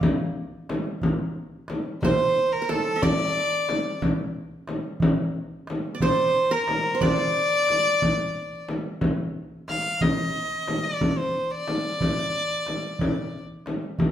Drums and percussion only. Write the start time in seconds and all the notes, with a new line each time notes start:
0.01 darbuka dum, frame drum
0.69 darbuka tek, frame drum
0.86 darbuka ka
1.02 darbuka dum, frame drum
1.35 darbuka ka
1.68 darbuka tek, frame drum
1.86 darbuka ka
2.02 darbuka dum, frame drum
2.36 darbuka ka
2.69 darbuka tek, frame drum
3.02 frame drum, darbuka dum
3.69 darbuka tek, frame drum
3.85 darbuka ka
4.02 frame drum, darbuka dum
4.35 darbuka ka
4.68 darbuka tek, frame drum
5.00 darbuka dum, frame drum
5.34 darbuka ka
5.67 darbuka tek, frame drum
5.85 darbuka ka
6.00 darbuka dum, frame drum
6.34 darbuka ka
6.68 darbuka tek, frame drum
7.01 darbuka dum, frame drum
7.68 darbuka tek, frame drum
7.85 darbuka ka
8.02 darbuka dum, frame drum
8.36 darbuka ka
8.69 darbuka tek, frame drum
8.85 darbuka ka
9.01 frame drum, darbuka dum
9.68 darbuka tek, frame drum
9.85 darbuka ka
10.01 darbuka dum, frame drum
10.68 darbuka tek, frame drum
11.01 darbuka dum, frame drum
11.67 darbuka tek, frame drum
11.84 darbuka ka
12.01 darbuka dum, frame drum
12.67 darbuka tek, frame drum
12.99 darbuka dum, frame drum
13.66 darbuka tek, frame drum
13.83 darbuka ka
13.99 darbuka dum, frame drum